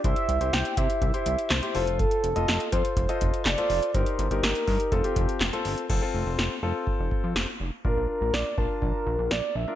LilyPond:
<<
  \new Staff \with { instrumentName = "Soft synth lead" } { \time 4/4 \key f \mixolydian \tempo 4 = 123 e''4 g''8 e''4. c''4 | a'4. c''8 c''4 d''4 | c''4 bes'4 a'4. r8 | r1 |
bes'8 bes'8 d''8 bes'8 bes'4 d''8 e''8 | }
  \new Staff \with { instrumentName = "Grand piano" } { \time 4/4 \key f \mixolydian <e' g' c''>8. <e' g' c''>8. <e' g' c''>8. <e' g' c''>8. r16 <e' g' c''>16 <f' a' c''>8~ | <f' a' c''>8 r16 <f' a' ees''>8. <f' a' c''>8. <f' a' ees''>8. r16 <f' a' c''>8. | <ees' g' bes'>8. <ees' g' bes'>8. <ees' g' bes'>8 <c' f' a'>16 <c' f' g'>8. r16 <c' f' a'>8. | <c' f' a'>16 <c' f' a'>4 r16 <c' f' a'>4.~ <c' f' a'>16 r8. |
<d' f' bes'>4~ <d' f' bes'>16 r16 <d' f' a''>4.~ <d' f' a''>16 r8 <d' f' bes'>16 | }
  \new Staff \with { instrumentName = "Analog synth bass" } { \clef bass \time 4/4 \key f \mixolydian c,16 r16 c,16 c,16 c,16 r16 c16 r16 c,16 r16 c,16 r16 c,16 r16 f,,8~ | f,,16 r16 f,,16 f,,16 f,,16 r16 f,16 r16 f,,16 r16 f,,16 r16 f,,16 r16 f,,16 r16 | g,,16 r16 g,,16 g,,16 g,,16 r16 g,16 r16 f,,16 r16 f,,16 r16 f,,16 r16 g,,16 r16 | f,,16 r16 f,,16 f,,16 f,,16 r16 f,,16 r8 f,,16 r16 f,16 f,,16 r16 f,,16 r16 |
bes,,16 bes,,16 r16 bes,,16 bes,,16 r16 bes,,16 r16 bes,,16 r16 bes,,16 bes,,16 bes,,16 r16 bes,,16 r16 | }
  \new DrumStaff \with { instrumentName = "Drums" } \drummode { \time 4/4 <hh bd>16 hh16 hh16 hh16 <hh sn>16 hh16 <hh bd>16 hh16 <hh bd>16 hh16 hh16 hh16 <hc hh sn>16 hh16 hho16 hh16 | <hh bd>16 hh16 hh16 hh16 <hh sn>16 hh16 <hh bd>16 hh16 <hh bd>16 hh16 <hh bd>16 hh16 <hc hh sn>16 hh16 hho16 hh16 | <hh bd>16 hh16 hh16 hh16 <hh sn>16 hh16 <hho bd>16 hh16 <hh bd>16 hh16 <hh bd>16 hh16 <hc hh sn>16 hh16 hho16 hh16 | <cymc bd>4 sn4 bd8 bd8 sn4 |
bd4 sn8 bd8 bd4 sn4 | }
>>